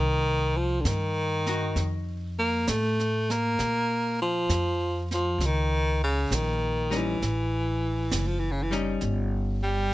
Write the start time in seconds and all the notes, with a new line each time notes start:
Already playing: C2 D#3
0.57 F3
0.81 G2 D3, snare, hi-hat pedal
0.87 D#3
1.46 D#4 F#4, snare
1.76 F2, brush sweep, snare
2.39 A#3
2.68 A2 A3, snare, hi-hat pedal
3.00 snare
3.30 A#3, snare
3.59 A#2, brush sweep, snare
4.22 F3
4.49 F2, snare, hi-hat pedal
5.11 F3, snare
5.38 C#2, brush sweep, snare
5.46 D#3
6.04 C#3
6.30 A#1 D#3, snare, hi-hat pedal
6.90 G3 C#4 D#4, snare
6.97 E3
7.22 A1, brush sweep, snare
8.11 F#1, snare, hi-hat pedal
8.27 F3
8.39 E3
8.52 C#3
8.62 E3
8.71 G3 C#4 D#4, snare
9.01 G1, brush sweep, snare
9.63 G3